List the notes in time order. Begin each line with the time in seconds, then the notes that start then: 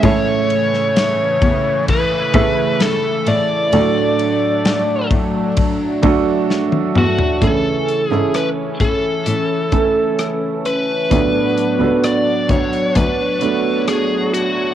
0.02 A2 C#3 E3 A3 C#4 E4 A4 C#5, kick, ride
0.50 ride
0.73 snare
0.96 snare, ride
1.42 E2, kick, ride
1.88 B4, kick, ride
2.34 A2 C#3 A3 E4 A4, kick, ride
2.80 A4, snare, ride
3.27 A2 D5, ride
3.72 D2 A2 F#3 A3 D4 F#4 A4, ride
4.19 ride
4.65 snare, ride
5.11 A2, kick, ride
5.57 kick, ride
6.03 D2 A3 D4 F#4 A4, kick, ride
6.50 snare
6.72 high tom
6.95 E2 F#4, mid tom
7.19 floor tom
7.41 A2 C#3 E3 A3 C#4 E4 A4, kick, closed hi-hat
7.89 closed hi-hat
8.08 G#2 C#4 E4 G#4
8.12 A4, cross-stick
8.34 B4, cross-stick, closed hi-hat
8.80 A2 A4, kick, closed hi-hat
9.26 A2, closed hi-hat
9.72 A3 C#4 E4 A4, kick, closed hi-hat
10.19 cross-stick, closed hi-hat
10.65 B4, closed hi-hat
11.10 D2 A2 F#3 B3 D4 F4 F#4 A4, kick, closed hi-hat
11.17 F#4
11.57 closed hi-hat
11.79 C#2 B3 D4 F#4 A4
12.04 D5, cross-stick, closed hi-hat
12.49 D2 C#5, kick, closed hi-hat
12.73 closed hi-hat
12.95 D2 B4 C#5, kick, closed hi-hat
13.41 A3 B3 D4 F#4, closed hi-hat
13.88 G#4, cross-stick, closed hi-hat
14.34 F#4, closed hi-hat